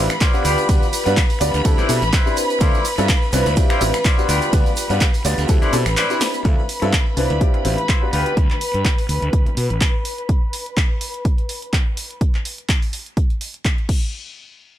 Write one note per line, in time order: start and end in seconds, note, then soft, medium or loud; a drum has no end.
0.00 6.44 B4 medium
0.00 6.44 B5 medium
0.10 finger snap medium
0.10 muted clean electric guitar stroke soft
0.10 closed hi-hat medium
0.10 tambourine soft
0.10 shaker soft
0.21 0.45 E4 medium
0.21 0.44 F4 medium
0.21 0.45 C5 medium
0.21 0.44 D5 medium
0.21 kick loud
0.21 clap loud
0.21 closed hi-hat medium
0.21 ride medium
0.21 tambourine soft
0.21 shaker medium
0.33 0.66 B3 medium
0.33 0.66 D4 medium
0.33 0.66 F4 medium
0.33 0.66 G4 medium
0.33 0.66 B4 medium
0.33 tambourine soft
0.33 shaker soft
0.45 0.55 D2 medium
0.45 1.03 F4 medium
0.45 1.04 G4 medium
0.45 1.04 B4 medium
0.45 1.04 D5 loud
0.45 open hi-hat loud
0.45 tambourine medium
0.45 shaker loud
0.58 closed hi-hat medium
0.58 tambourine soft
0.58 shaker soft
0.68 0.79 D2 loud
0.68 0.84 B3 medium
0.68 0.84 D4 medium
0.68 0.84 F4 medium
0.68 0.84 G4 medium
0.68 0.84 B4 loud
0.68 kick loud
0.68 closed hi-hat medium
0.68 ride medium
0.68 tambourine soft
0.68 shaker medium
0.83 tambourine soft
0.83 shaker soft
0.93 open hi-hat loud
0.93 tambourine medium
0.93 shaker medium
1.06 1.15 G2 medium
1.06 1.19 B3 loud
1.06 1.19 D4 medium
1.06 1.19 F4 medium
1.06 1.19 G4 medium
1.06 1.19 B4 loud
1.06 closed hi-hat medium
1.06 tambourine soft
1.06 shaker soft
1.17 kick loud
1.17 clap loud
1.17 closed hi-hat medium
1.17 ride medium
1.17 tambourine soft
1.17 shaker medium
1.30 open hi-hat medium
1.30 shaker soft
1.40 1.51 D2 loud
1.40 1.62 B3 medium
1.40 1.62 D4 medium
1.40 1.62 F4 medium
1.40 1.62 G4 medium
1.40 1.62 D5 loud
1.40 muted clean electric guitar stroke loud
1.40 open hi-hat loud
1.40 tambourine medium
1.40 shaker loud
1.54 1.62 D2 medium
1.54 muted clean electric guitar stroke soft
1.54 closed hi-hat medium
1.54 tambourine soft
1.54 shaker soft
1.64 1.75 D2 medium
1.64 1.86 C4 loud
1.64 1.86 D4 medium
1.64 1.86 E4 medium
1.64 1.86 G4 medium
1.64 1.86 A4 loud
1.64 kick loud
1.64 closed hi-hat medium
1.64 ride medium
1.64 tambourine soft
1.64 shaker soft
1.78 1.89 E4 loud
1.78 1.89 B4 medium
1.78 1.89 C5 loud
1.78 1.89 D5 loud
1.78 muted fingered electric bass stroke soft
1.78 closed hi-hat soft
1.78 tambourine soft
1.78 shaker soft
1.88 1.99 B2 loud
1.88 1.98 C4 medium
1.88 1.98 D4 medium
1.88 1.98 E4 medium
1.88 1.99 G4 medium
1.88 1.99 A4 loud
1.88 open hi-hat loud
1.88 tambourine medium
1.88 shaker medium
2.02 2.10 A1 medium
2.02 muted clean electric guitar stroke soft
2.02 closed hi-hat medium
2.02 tambourine soft
2.02 shaker soft
2.13 2.37 E4 medium
2.13 2.37 B4 medium
2.13 2.37 C5 medium
2.13 2.37 E5 loud
2.13 kick loud
2.13 clap loud
2.13 closed hi-hat medium
2.13 ride medium
2.13 tambourine soft
2.13 shaker medium
2.25 2.58 C4 medium
2.25 2.58 D4 medium
2.25 2.58 E4 medium
2.25 2.58 G4 medium
2.25 2.58 B5 medium
2.25 tambourine soft
2.25 shaker soft
2.37 open hi-hat loud
2.37 tambourine medium
2.37 shaker medium
2.50 closed hi-hat medium
2.50 tambourine soft
2.50 shaker soft
2.60 2.71 D2 loud
2.60 2.76 C4 medium
2.60 2.76 D4 medium
2.60 2.76 E4 medium
2.60 2.85 E4 loud
2.60 2.85 F4 loud
2.60 2.76 F4 medium
2.60 2.76 A4 loud
2.60 2.85 C5 loud
2.60 2.85 D5 loud
2.60 kick loud
2.60 closed hi-hat medium
2.60 ride medium
2.60 tambourine soft
2.60 shaker medium
2.74 tambourine soft
2.74 shaker soft
2.85 open hi-hat loud
2.85 tambourine medium
2.85 shaker loud
2.98 3.06 G2 medium
2.98 3.11 C4 loud
2.98 3.11 D4 medium
2.98 3.11 E4 medium
2.98 3.11 F4 medium
2.98 3.11 A4 loud
2.98 closed hi-hat medium
2.98 tambourine soft
2.98 shaker soft
3.09 muted clean electric guitar stroke soft
3.09 kick loud
3.09 clap loud
3.09 closed hi-hat medium
3.09 ride medium
3.09 tambourine soft
3.09 shaker medium
3.22 shaker soft
3.32 3.43 C2 loud
3.32 3.54 C4 loud
3.32 3.54 D4 medium
3.32 3.54 E4 medium
3.32 3.54 F4 medium
3.32 3.55 B4 loud
3.32 muted clean electric guitar stroke medium
3.32 open hi-hat loud
3.32 tambourine medium
3.32 shaker medium
3.46 3.54 D2 loud
3.46 muted clean electric guitar stroke soft
3.46 closed hi-hat medium
3.46 tambourine soft
3.46 shaker soft
3.56 3.78 C4 loud
3.56 3.78 D4 medium
3.56 3.78 E4 medium
3.56 3.78 F4 medium
3.56 3.79 G4 loud
3.56 kick loud
3.56 closed hi-hat medium
3.56 ride medium
3.56 tambourine soft
3.56 shaker medium
3.70 3.81 E4 loud
3.70 3.81 F4 loud
3.70 3.81 C5 loud
3.70 3.81 D5 loud
3.70 finger snap medium
3.70 closed hi-hat soft
3.70 tambourine soft
3.70 shaker soft
3.80 3.91 A1 medium
3.80 3.90 C4 medium
3.80 3.90 D4 medium
3.80 3.91 E4 medium
3.80 3.91 F4 medium
3.80 3.91 G4 loud
3.80 open hi-hat loud
3.80 tambourine medium
3.80 shaker medium
3.94 finger snap medium
3.94 muted clean electric guitar stroke soft
3.94 closed hi-hat medium
3.94 tambourine soft
3.94 shaker soft
4.04 4.29 E4 medium
4.04 4.28 F4 medium
4.04 4.29 C5 medium
4.04 4.28 D5 medium
4.04 kick loud
4.04 clap loud
4.04 closed hi-hat medium
4.04 ride medium
4.04 tambourine soft
4.04 shaker medium
4.18 4.50 B3 medium
4.18 4.50 D4 medium
4.18 4.50 F4 medium
4.18 4.50 G4 medium
4.18 4.50 B4 loud
4.18 tambourine soft
4.18 shaker soft
4.29 4.39 D2 medium
4.29 4.88 F4 medium
4.29 4.88 G4 medium
4.29 4.88 B4 medium
4.29 4.88 D5 loud
4.29 open hi-hat loud
4.29 tambourine medium
4.29 shaker medium
4.42 closed hi-hat medium
4.42 tambourine soft
4.42 shaker soft
4.53 4.63 D2 loud
4.53 4.68 B3 medium
4.53 4.68 D4 medium
4.53 4.68 F4 medium
4.53 4.68 G4 medium
4.53 4.68 B4 loud
4.53 kick loud
4.53 closed hi-hat medium
4.53 ride medium
4.53 tambourine soft
4.53 shaker medium
4.66 closed hi-hat soft
4.66 tambourine soft
4.66 shaker soft
4.76 open hi-hat loud
4.76 tambourine medium
4.76 shaker loud
4.90 4.98 G2 medium
4.90 5.03 B3 loud
4.90 5.03 D4 medium
4.90 5.03 F4 medium
4.90 5.04 G4 medium
4.90 5.04 B4 loud
4.90 closed hi-hat medium
4.90 tambourine soft
4.90 shaker soft
5.01 kick loud
5.01 clap loud
5.01 closed hi-hat medium
5.01 ride medium
5.01 tambourine soft
5.01 shaker soft
5.14 open hi-hat medium
5.14 tambourine soft
5.14 shaker soft
5.25 5.35 D2 loud
5.25 5.46 B3 medium
5.25 5.46 D4 medium
5.25 5.46 F4 medium
5.25 5.46 G4 medium
5.25 5.47 D5 loud
5.25 muted clean electric guitar stroke medium
5.25 open hi-hat loud
5.25 tambourine medium
5.25 shaker loud
5.38 5.46 D2 loud
5.38 muted clean electric guitar stroke soft
5.38 closed hi-hat medium
5.38 tambourine soft
5.38 shaker soft
5.48 5.59 D2 medium
5.48 5.70 C4 loud
5.48 5.70 D4 medium
5.48 5.70 E4 medium
5.48 5.70 G4 medium
5.48 5.71 A4 loud
5.48 kick loud
5.48 closed hi-hat medium
5.48 ride medium
5.48 tambourine soft
5.48 shaker medium
5.62 5.73 E4 loud
5.62 5.73 B4 loud
5.62 5.73 C5 loud
5.62 5.73 D5 loud
5.62 muted fingered electric bass stroke soft
5.62 closed hi-hat soft
5.62 tambourine soft
5.62 shaker soft
5.73 5.83 B2 medium
5.73 5.82 C4 medium
5.73 5.83 D4 medium
5.73 5.83 E4 medium
5.73 5.83 G4 medium
5.73 5.83 A4 loud
5.73 open hi-hat loud
5.73 tambourine medium
5.73 shaker medium
5.86 5.94 A1 loud
5.86 finger snap medium
5.86 muted clean electric guitar stroke soft
5.86 closed hi-hat medium
5.86 tambourine soft
5.86 shaker soft
5.97 6.21 E4 medium
5.97 6.21 B4 medium
5.97 6.21 C5 medium
5.97 6.21 D5 medium
5.97 clap loud
5.97 closed hi-hat medium
5.97 ride medium
5.97 tambourine soft
5.97 shaker medium
6.10 6.42 C4 medium
6.10 6.42 D4 medium
6.10 6.42 E4 medium
6.10 6.42 G4 medium
6.10 6.42 B5 medium
6.10 closed hi-hat soft
6.10 tambourine soft
6.10 shaker soft
6.21 snare loud
6.21 open hi-hat loud
6.21 tambourine medium
6.21 shaker medium
6.34 closed hi-hat medium
6.34 tambourine soft
6.34 shaker soft
6.45 6.55 D2 loud
6.45 6.60 C4 medium
6.45 6.60 D4 medium
6.45 6.60 E4 medium
6.45 6.60 F4 medium
6.45 6.60 A4 medium
6.45 12.22 B4 medium
6.45 12.22 B5 medium
6.45 muted clean electric guitar stroke loud
6.45 kick loud
6.45 closed hi-hat medium
6.45 shaker medium
6.58 muted clean electric guitar stroke soft
6.58 shaker soft
6.69 open hi-hat loud
6.69 shaker medium
6.82 6.90 G2 medium
6.82 6.95 C4 medium
6.82 6.95 D4 medium
6.82 6.95 E4 medium
6.82 6.95 F4 medium
6.82 6.95 A4 loud
6.82 muted clean electric guitar stroke medium
6.82 closed hi-hat medium
6.82 shaker soft
6.93 kick loud
6.93 clap loud
6.93 closed hi-hat medium
7.06 muted clean electric guitar stroke soft
7.06 shaker soft
7.17 7.27 C2 loud
7.17 7.38 C4 medium
7.17 7.38 D4 medium
7.17 7.38 E4 medium
7.17 7.38 F4 medium
7.17 7.38 B4 loud
7.17 open hi-hat loud
7.17 shaker medium
7.30 7.38 D2 medium
7.30 closed hi-hat medium
7.30 shaker soft
7.40 7.62 C4 loud
7.40 7.62 D4 medium
7.40 7.62 E4 medium
7.40 7.62 F4 medium
7.40 7.62 G4 loud
7.40 kick loud
7.40 closed hi-hat medium
7.40 shaker medium
7.54 muted clean electric guitar stroke loud
7.54 closed hi-hat soft
7.54 shaker soft
7.64 7.75 A1 medium
7.64 7.74 C4 medium
7.64 7.74 D4 medium
7.64 7.75 E4 medium
7.64 7.75 F4 medium
7.64 7.75 G4 loud
7.64 muted clean electric guitar stroke medium
7.64 open hi-hat loud
7.64 shaker medium
7.78 muted clean electric guitar stroke soft
7.78 closed hi-hat medium
7.78 shaker soft
7.89 8.02 E4 medium
7.89 8.02 F4 medium
7.89 8.02 C5 medium
7.89 kick loud
7.89 clap loud
7.89 closed hi-hat medium
8.02 8.34 B3 medium
8.02 8.34 D4 medium
8.02 8.34 F4 medium
8.02 8.34 G4 medium
8.02 8.34 B4 medium
8.02 shaker soft
8.13 8.23 D2 medium
8.13 8.33 F4 medium
8.13 8.33 G4 medium
8.13 8.33 B4 loud
8.13 open hi-hat loud
8.13 shaker medium
8.26 closed hi-hat medium
8.26 shaker soft
8.37 8.47 D2 loud
8.37 kick loud
8.37 closed hi-hat medium
8.50 clap soft
8.60 open hi-hat loud
8.60 shaker loud
8.74 8.82 G2 medium
8.74 closed hi-hat medium
8.85 kick loud
8.85 clap loud
8.85 closed hi-hat medium
8.98 open hi-hat medium
9.09 9.19 D2 medium
9.09 open hi-hat loud
9.09 shaker loud
9.22 9.30 D2 medium
9.22 closed hi-hat medium
9.33 9.43 D2 medium
9.33 kick loud
9.33 closed hi-hat medium
9.46 muted fingered electric bass stroke soft
9.46 closed hi-hat soft
9.57 9.67 B2 medium
9.57 open hi-hat loud
9.70 9.79 A1 medium
9.70 closed hi-hat medium
9.81 kick loud
9.81 clap loud
9.81 closed hi-hat medium
10.05 open hi-hat loud
10.18 closed hi-hat soft
10.29 kick loud
10.29 closed hi-hat medium
10.53 open hi-hat loud
10.66 closed hi-hat soft
10.77 kick loud
10.77 clap loud
10.77 closed hi-hat medium
11.01 open hi-hat loud
11.14 closed hi-hat soft
11.25 kick loud
11.25 closed hi-hat medium
11.38 closed hi-hat soft
11.49 open hi-hat loud
11.62 closed hi-hat medium
11.73 kick loud
11.73 clap loud
11.73 closed hi-hat medium
11.97 open hi-hat loud
12.11 closed hi-hat soft
12.21 kick loud
12.21 closed hi-hat medium
12.35 clap soft
12.45 open hi-hat loud
12.58 closed hi-hat soft
12.69 kick loud
12.69 clap loud
12.69 closed hi-hat medium
12.82 open hi-hat medium
12.93 open hi-hat loud
13.06 closed hi-hat soft
13.17 kick loud
13.17 closed hi-hat medium
13.30 closed hi-hat soft
13.41 open hi-hat loud
13.54 closed hi-hat soft
13.65 kick loud
13.65 clap loud
13.65 closed hi-hat medium
13.78 closed hi-hat soft
13.89 kick loud
13.89 crash medium